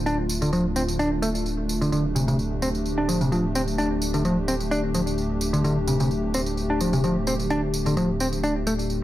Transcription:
Already playing: D1 A3 D4 F4
0.06 D4, tambourine
0.29 tambourine
0.42 D3, tambourine
0.53 F3, tambourine
0.76 C4, tambourine
0.88 tambourine
0.99 D4, tambourine
1.22 A3, tambourine
1.35 tambourine
1.46 tambourine
1.69 tambourine
1.81 D3, tambourine
1.92 D1 D3 G4, tambourine
2.15 C3, tambourine
2.28 C3, tambourine
2.39 tambourine
2.62 C4, tambourine
2.75 tambourine
2.86 tambourine
2.98 D4
3.08 F3, tambourine
3.21 C3, tambourine
3.32 F3, tambourine
3.55 C4, tambourine
3.68 tambourine
3.78 D4, tambourine
4.02 tambourine
4.14 D3, tambourine
4.25 F3, tambourine
4.48 C4, tambourine
4.60 tambourine
4.71 D4, tambourine
4.94 F3, tambourine
5.07 tambourine
5.18 tambourine
5.41 tambourine
5.53 D3, tambourine
5.64 D3, tambourine
5.88 C3, tambourine
6.00 C3, tambourine
6.11 tambourine
6.34 C4, tambourine
6.46 tambourine
6.57 tambourine
6.70 D4
6.80 F3, tambourine
6.93 C3, tambourine
7.04 F3, tambourine
7.27 C4, tambourine
7.39 tambourine
7.50 D4, tambourine
7.74 tambourine
7.86 D3, tambourine
7.97 F3, tambourine
8.20 C4, tambourine
8.33 tambourine
8.43 D4, tambourine
8.67 A3, tambourine
8.79 tambourine
8.90 tambourine

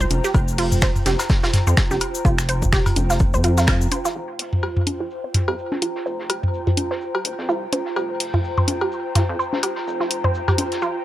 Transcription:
Already playing: F4 C5 G5 A#5
0.00 C5, shaker
0.10 F1, closed hi-hat, high conga, shaker
0.24 G4, snare, shaker
0.34 F1, kick, cowbell, shaker
0.48 shaker
0.58 F4, closed hi-hat, open hi-hat
0.72 mid tom, shaker
0.82 C5, finger snap, kick, snare, shaker
0.96 mid tom, shaker
1.06 F1 G4, snare, closed hi-hat, high conga, shaker
1.19 snare, cowbell, shaker
1.30 kick, snare, shaker
1.43 F4, snare, shaker
1.53 snare, closed hi-hat, mid tom, shaker
1.67 F2 C5, shaker
1.77 finger snap, kick, snare, shaker
1.91 F1 G4, snare, high conga, shaker
2.01 closed hi-hat, cowbell, shaker
2.15 shaker
2.25 F1 F4, kick, shaker
2.38 finger snap, snare, shaker
2.49 C5, closed hi-hat, shaker
2.62 kick, mid tom, shaker
2.73 G4, finger snap, kick, snare, shaker
2.86 closed hi-hat, mid tom, cowbell, shaker
2.96 F1, closed hi-hat, high conga, shaker
3.10 F4, snare, shaker
3.20 kick, shaker
3.34 F2 C5, shaker
3.44 F4, closed hi-hat, shaker
3.57 F4, snare, closed hi-hat, shaker
3.67 F5, finger snap, kick, snare, cowbell, shaker
3.81 shaker
3.91 C5, closed hi-hat, high conga, shaker
4.05 F4, snare, shaker
4.15 F1 F4, shaker
4.26 C5
4.39 C5, closed hi-hat, open hi-hat
4.53 mid tom
4.62 G4 G5, cowbell, shaker
4.77 mid tom
4.87 F1, closed hi-hat, high conga, shaker
5.00 F4
5.11 shaker
5.24 C5
5.34 A#5, snare, closed hi-hat, mid tom
5.48 F2 G4, cowbell
5.58 shaker
5.72 F1, snare, high conga
5.82 F4, closed hi-hat
5.96 snare
6.06 F1 C5, shaker
6.19 snare
6.30 G4, closed hi-hat, cowbell
6.43 mid tom
6.54 shaker
6.67 F4, closed hi-hat, mid tom
6.77 F1, closed hi-hat, high conga, shaker
6.91 C5, snare
7.01 shaker
7.15 G4, cowbell
7.25 D#1, closed hi-hat, shaker
7.38 F2, snare
7.49 C2 F4, shaker
7.73 F1 C5, closed hi-hat, high conga, shaker
7.86 snare
7.96 F1 G4, cowbell, shaker
8.20 closed hi-hat, open hi-hat
8.34 F4, mid tom
8.44 shaker
8.58 C5, mid tom
8.68 F1, closed hi-hat, high conga, shaker
8.81 G4, cowbell
8.92 shaker
9.15 F4, snare, closed hi-hat, mid tom
9.29 F2
9.39 C5, shaker
9.53 F1, snare, high conga
9.63 G4, closed hi-hat, cowbell, shaker
9.76 snare
9.87 F1, shaker
10.00 F4, snare
10.11 closed hi-hat
10.24 C5, mid tom
10.34 shaker
10.48 G4, closed hi-hat, mid tom, cowbell
10.58 F1, closed hi-hat, high conga, shaker
10.72 snare, closed hi-hat
10.82 F4, shaker

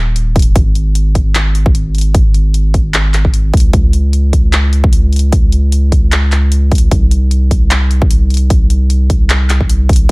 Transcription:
Already playing: D#1
0.16 closed hi-hat
0.36 kick, closed hi-hat
0.39 closed hi-hat
0.42 closed hi-hat
0.56 G#1, kick, closed hi-hat
0.75 closed hi-hat
0.95 closed hi-hat
1.15 kick, closed hi-hat
1.35 clap, closed hi-hat
1.55 closed hi-hat
1.66 kick
1.75 closed hi-hat
1.95 closed hi-hat
1.98 closed hi-hat
2.01 closed hi-hat
2.15 kick, closed hi-hat
2.34 closed hi-hat
2.54 closed hi-hat
2.74 kick, closed hi-hat
2.94 clap, closed hi-hat
3.14 clap, closed hi-hat
3.25 kick
3.34 closed hi-hat
3.54 C#2, kick, closed hi-hat
3.57 closed hi-hat
3.60 closed hi-hat
3.73 kick, closed hi-hat
3.93 closed hi-hat
4.13 closed hi-hat
4.33 kick, closed hi-hat
4.53 clap, closed hi-hat
4.73 closed hi-hat
4.84 kick
4.93 closed hi-hat
5.13 closed hi-hat
5.16 closed hi-hat
5.19 closed hi-hat
5.32 kick, closed hi-hat
5.52 closed hi-hat
5.72 closed hi-hat
5.92 kick, closed hi-hat
6.12 clap, closed hi-hat
6.32 clap, closed hi-hat
6.52 closed hi-hat
6.72 kick, closed hi-hat
6.75 closed hi-hat
6.78 closed hi-hat
6.91 C2, kick, closed hi-hat
7.11 closed hi-hat
7.31 closed hi-hat
7.51 kick, closed hi-hat
7.71 clap, closed hi-hat
7.91 closed hi-hat
8.02 kick
8.11 closed hi-hat
8.30 closed hi-hat
8.34 closed hi-hat
8.37 closed hi-hat
8.50 kick, closed hi-hat
8.70 closed hi-hat
8.90 closed hi-hat
9.10 kick, closed hi-hat
9.30 clap, closed hi-hat
9.50 clap, closed hi-hat
9.61 kick
9.70 closed hi-hat
9.89 kick, closed hi-hat
9.93 closed hi-hat
9.96 closed hi-hat

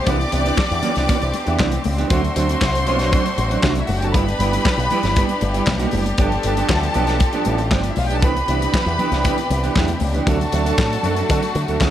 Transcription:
Already playing: B3 G4
0.05 C2 E3 B3 C4 D4 G4 D5 D6, kick, closed hi-hat, muted conga
0.19 muted clean electric guitar stroke, closed hi-hat
0.32 C2 E3 B3 D4 G4, closed hi-hat
0.44 E3 B3 D4 G4, closed hi-hat
0.58 muted clean electric guitar stroke, kick, snare, clap, high conga
0.70 E2, muted clean electric guitar stroke, closed hi-hat
0.82 E3 B3 D4 G4, closed hi-hat, low conga
0.95 C2 E3 B3 D4 G4, snare, closed hi-hat
1.07 E3 B3 D4 G4, kick, closed hi-hat, muted conga
1.20 C2, muted clean electric guitar stroke, closed hi-hat
1.33 muted clean electric guitar stroke, closed hi-hat, muted conga
1.45 E2 E3 B3 D4 G4, closed hi-hat
1.58 C2 E3 B3 D4 G4, kick, snare, clap, high conga
1.72 muted clean electric guitar stroke, closed hi-hat
1.84 C#2, muted clean electric guitar stroke, open hi-hat, high conga
1.98 E3 B3 D4 G4, closed hi-hat
2.10 D2 F#3 A3 C4 D4 F#4 C5 C6, kick, closed hi-hat, muted conga
2.24 muted clean electric guitar stroke, closed hi-hat
2.36 D2 F#3 C4 D4 F#4, closed hi-hat
2.48 F#3 C4 D4 F#4, closed hi-hat
2.61 C2, muted clean electric guitar stroke, kick, snare, clap, high conga
2.74 muted clean electric guitar stroke, closed hi-hat
2.87 B1 F#3 C4 D4 F#4, closed hi-hat
2.99 F#3 C4 D4 F#4, snare, closed hi-hat
3.12 F#3 C4 D4 F#4, kick, closed hi-hat, muted conga
3.25 muted clean electric guitar stroke, closed hi-hat
3.37 A1, muted clean electric guitar stroke, closed hi-hat, muted conga
3.50 F#3 C4 D4 F#4, closed hi-hat
3.62 C2 F#3 C4 D4 F#4, kick, snare, clap, high conga
3.75 muted clean electric guitar stroke, closed hi-hat
3.80 E4 E5
3.87 F#1 F#4 F#5, muted clean electric guitar stroke, open hi-hat, high conga
3.97 G4 G5
4.02 F#3 C4 D4 F#4 A4 A5, closed hi-hat
4.13 G1 E3 G3 B3 E4 G4 B4 B5, kick, closed hi-hat, muted conga
4.27 muted clean electric guitar stroke, closed hi-hat
4.39 G1 G3 B3 E4 G4, closed hi-hat, muted conga
4.53 G3 B3 E4 G4, closed hi-hat
4.65 kick, snare, clap, high conga
4.77 B1, muted clean electric guitar stroke, closed hi-hat
4.90 G3 B3 E4 G4, closed hi-hat, low conga
5.03 G1 G3 B3 E4 G4, snare, closed hi-hat
5.16 G3 B3 E4 G4, kick, closed hi-hat, muted conga
5.29 muted clean electric guitar stroke, closed hi-hat
5.41 G1, muted clean electric guitar stroke, closed hi-hat, muted conga
5.54 G3 B3 E4 G4, closed hi-hat
5.67 B1, muted clean electric guitar stroke, kick, snare, clap, high conga
5.79 G3 B3 E4 G4, closed hi-hat
5.91 F#1 G3 B3 E4 G4, open hi-hat, high conga
6.05 muted clean electric guitar stroke, closed hi-hat
6.18 G1 F3 B3 D4 G4 A4 A5, kick, closed hi-hat, muted conga
6.31 muted clean electric guitar stroke, closed hi-hat
6.43 G1 F3 B3 D4 G4, closed hi-hat
6.56 F3 B3 D4 G4, closed hi-hat
6.69 D2, muted clean electric guitar stroke, kick, snare, clap, high conga
6.82 muted clean electric guitar stroke, closed hi-hat
6.94 B1 F3 B3 D4 G4, closed hi-hat
7.07 F3 B3 D4 G4, snare, closed hi-hat
7.20 muted clean electric guitar stroke, kick, closed hi-hat, muted conga
7.33 F3 B3 D4 G4, closed hi-hat
7.45 A1 F3 B3 D4 G4, closed hi-hat, muted conga
7.58 muted clean electric guitar stroke, closed hi-hat
7.71 G1 F3 B3 C4 D4 G4 C5, kick, snare, clap, high conga
7.81 D4 D5, muted clean electric guitar stroke, closed hi-hat
7.89 E4 E5
7.96 B1 F4 F5, muted clean electric guitar stroke, open hi-hat, high conga
8.06 G4 G5
8.10 F3 B3 D4 A5, closed hi-hat
8.15 A4
8.22 C2 C3 E3 B3 D4 G4 B4 B5, kick, closed hi-hat, muted conga
8.35 muted clean electric guitar stroke, closed hi-hat
8.48 C2 E3 B3 D4 G4, closed hi-hat
8.61 E3 B3 D4 G4, closed hi-hat
8.74 muted clean electric guitar stroke, kick, snare, clap, high conga
8.86 E2, muted clean electric guitar stroke, closed hi-hat
8.99 E3 B3 D4 G4, closed hi-hat, low conga
9.11 C2 E3 B3 D4 G4, snare, closed hi-hat
9.24 E3 B3 D4 G4, kick, closed hi-hat, muted conga
9.38 muted clean electric guitar stroke, closed hi-hat
9.50 C2, muted clean electric guitar stroke, closed hi-hat, muted conga
9.63 E3 B3 D4 G4, closed hi-hat
9.75 E2 E3 B3 D4 G4, kick, snare, clap, high conga
9.88 muted clean electric guitar stroke, closed hi-hat
10.00 C#2, muted clean electric guitar stroke, open hi-hat, high conga
10.14 E3 B3 D4 G4, closed hi-hat
10.27 D2 F#3 A3 C4 D4 F#4 A4 A5, kick, closed hi-hat, muted conga
10.40 muted clean electric guitar stroke, closed hi-hat
10.52 D2 F#3 C4 D4 A4, closed hi-hat, muted conga
10.65 F#3 C4 D4 A4, closed hi-hat
10.78 A2, kick, snare, clap, high conga
10.90 muted clean electric guitar stroke, closed hi-hat
11.02 F#2 F#3 C4 D4 A4, closed hi-hat, low conga
11.15 F#3 C4 D4 A4, closed hi-hat
11.29 D3 F#3 C4 D4 A4, kick, closed hi-hat, muted conga
11.43 muted clean electric guitar stroke, closed hi-hat
11.55 D3, muted clean electric guitar stroke, closed hi-hat, muted conga
11.67 D2 F#3 C4 D4 A4, closed hi-hat
11.80 D2 F#3 C4 D4 A4, kick, snare, clap, high conga

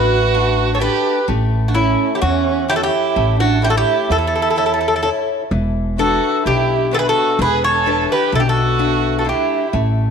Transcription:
Already playing: A1 A3 D4 E4 F#4 B4
0.34 D4 E4 F#5
0.75 A4 C#5
0.80 D4 E4 G4 A4 B4
1.28 A1 A3
1.68 D4 F#4
1.74 C#4 E4 A4 C#5
2.15 E4 G4
2.22 E2 E3 C#4 F#4
2.68 E4 G4 A4 C#5
2.76 F#4 A4
2.83 E4 G4
3.16 A1 A3
3.40 D4 F#4
3.62 E4 G4 A4 C#5
3.69 F#4 A4
3.77 E4 G4
4.10 E2 E3 E4 A4
4.27 A4
4.35 A4
4.42 A4
4.50 A4
4.56 E4 A4 C#5
4.66 A4
4.74 A4
4.81 A4
4.88 A4
4.96 A4
5.03 E4 A4 C#5
5.51 E1 E3
5.98 D4 E4 F#4 A4 B4
6.45 B1 B2 E4 G4
6.91 D4 E4 F#4 A4 B4
6.97 G#4 B4
7.07 F#4 A4
7.39 E1 E3 G#4 B4
7.64 A4 C#5
7.86 D4 E4 B4
8.12 G4 B4
8.32 B1 B2 E4 A4
8.39 D4 G4
8.48 F#4 A4
8.79 D4 E4 B4
9.19 F#4 A4
9.25 G#3 D4 E4
9.29 G4
9.73 A1 A3

